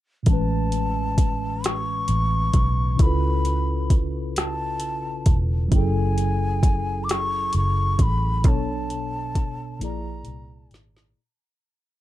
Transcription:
0.23 A2 E3, kick, closed hi-hat
0.27 A1 G#3 C#4 A5
0.33 B4
0.72 closed hi-hat
1.18 kick, closed hi-hat
1.64 C#6, cross-stick, closed hi-hat
2.08 A1, closed hi-hat
2.53 B1, kick, closed hi-hat
2.96 C#3 C#4 E4, kick, closed hi-hat
3.00 C#2 F4 A4 B5
3.06 B4
3.45 closed hi-hat
3.90 kick, closed hi-hat
4.36 A5, cross-stick, closed hi-hat
4.80 B1, closed hi-hat
5.26 E1, kick, closed hi-hat
5.68 F#1 F#3 C#4, kick, closed hi-hat
5.73 E4 G#4 G5
5.78 A4
5.86 G#5
6.18 closed hi-hat
6.63 kick, closed hi-hat
7.04 D6
7.09 C#6, cross-stick, closed hi-hat
7.53 F#1, closed hi-hat
7.57 C#6
7.99 A1 B5, kick, closed hi-hat
8.43 B1 B2 B3 D4 A4, kick, closed hi-hat
8.48 C#5 A5
8.90 closed hi-hat
9.35 kick, closed hi-hat
9.79 A#1 A#2 A#3 E4, closed hi-hat
9.83 G#4 D5 A#5
10.25 C2, closed hi-hat
10.71 G#1, snare, closed hi-hat
10.97 snare

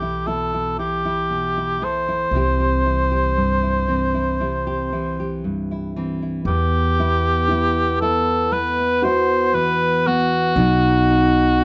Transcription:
Already playing: B1 E3 A3 G4
0.02 E4
0.27 B2 E4 A4
0.54 E4
0.79 E3 E4 G4
1.05 E4
1.30 B2
1.57 E4
1.81 E3 A3 C5
2.08 E4
2.31 C2 C3 E3 C4
2.36 E4 G4
2.60 G4
2.85 E3 E4
3.11 G4
3.37 G2
3.63 E4
3.88 E3 C4
4.14 E4
4.40 C3 E4
4.67 G4
4.92 E3 E4
5.20 G4
5.44 G2
5.71 E4
5.96 E3 C4
6.22 E4
6.45 E2 B3 G4
7.00 E4
7.48 E4
8.01 E4 A4
8.52 A3 B4
9.02 E4 F#4 C5
9.54 E3 B4
10.07 B3 F#4
10.56 B1 B2 F#3 B3 D#4
11.10 D#4

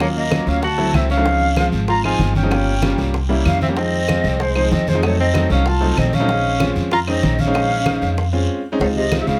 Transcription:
Already playing: D#2
0.00 F#3 A#3 C#4 F4 C#5, high bongo, high conga, long guiro, claves
0.16 A#3 D#5, high conga
0.31 F#3 A#3 C#4 F4, high bongo, high conga, short guiro, claves
0.46 D2 C#4 F5, high bongo, short guiro
0.62 F#4 A5, high bongo, high conga, long guiro
0.78 F#3 A3 C4 E4, high bongo, high conga
0.93 C#2 C4 E5, high bongo, low bongo, high conga, short guiro, claves
1.10 C#4 F5, high bongo, short guiro
1.17 F#3 A3 C4 D4
1.25 F3 G#3 C4 D#4, high bongo, high conga, long guiro
1.41 high conga
1.56 F3 G#3 C4 F4, high bongo, high conga, short guiro, claves
1.72 G#1, high bongo, high conga, short guiro
1.88 F4 A#5, high bongo, high conga, long guiro
2.03 F3 G#3 C4 D#4 F4 G#5, high bongo, high conga, claves
2.19 G1, high bongo, low bongo, high conga, short guiro
2.35 C#4 G5, high bongo, high conga, short guiro
2.43 F3 G#3 C4 D#4
2.51 G3 A#3 C#4 F4, high bongo, high conga, long guiro, claves
2.67 high conga
2.82 G3 A#3 C#4 F4, high bongo, high conga, short guiro, claves
2.98 C2, high bongo, short guiro
3.14 high bongo, high conga, long guiro
3.29 G3 A#3 C#4 E4, high bongo, high conga
3.45 F2 C#4 F5, high bongo, low bongo, high conga, short guiro, claves
3.61 C4 E5, high bongo, high conga, short guiro
3.68 G3 A#3 C#4 G4
3.77 F3 G#3 C4 D#4 D#5, high bongo, high conga, long guiro
3.93 high conga
4.08 F3 G#3 C4 F4, high bongo, high conga, short guiro, claves
4.24 C2, high bongo, high conga, short guiro
4.40 G#3 C5, high bongo, high conga, long guiro
4.55 F3 G#3 C4 D#4, high bongo, high conga, claves
4.71 F2 C4 D#5, high bongo, low bongo, high conga, short guiro
4.87 G#3 C5, high bongo, high conga, short guiro
4.94 F3 G#3 C4 D#4
5.02 F#3 A3 C4 D#4 C#5, high bongo, long guiro, claves
5.19 C4 D#5, high conga
5.34 F#3 A3 C4 D#4, high bongo, high conga, short guiro, claves
5.50 C2 C#4 F5, high bongo, short guiro
5.66 F4 A5, high bongo, high conga, long guiro
5.81 F#3 A3 C4 D#4, high bongo, high conga
5.97 A#1 C4 D#5, high bongo, low bongo, high conga, short guiro, claves
6.13 C#4 F5, high bongo, high conga, short guiro
6.20 F#3 A3 C4 D#4
6.28 G#3 C4 C#4 D#4, high bongo, high conga, long guiro
6.45 high conga
6.60 G#3 C4 C#4 F4, high bongo, high conga, short guiro, claves
6.75 F2, high bongo, high conga, short guiro
6.91 F4 A#5, high bongo, high conga, long guiro
7.07 G#3 C4 C#4 D#4 D#5, high bongo, high conga, claves
7.23 A#1, high bongo, low bongo, high conga, short guiro
7.39 C#4 F5, high bongo, high conga, short guiro
7.46 G#3 C4 C#4 D#4
7.54 G#3 C4 C#4 D#4, high bongo, high conga, long guiro, claves
7.70 high conga
7.85 G#3 C#4 D#4 C5, high bongo, high conga, short guiro, claves
8.01 F2, high bongo, short guiro
8.17 high bongo, high conga, long guiro
8.33 G#3 C4 C#4 F4, high bongo, high conga
8.72 G#3 C4 C#4 D#4
8.79 C#2 G#2 G#3 C4 C#5, high bongo, high conga, long guiro
8.95 C3 D#5, high conga
9.11 G#3 C4 D#4 F4, high bongo, high conga, short guiro, claves
9.20 C3 E5
9.27 C#2 C#3 F5, high bongo, high conga, short guiro

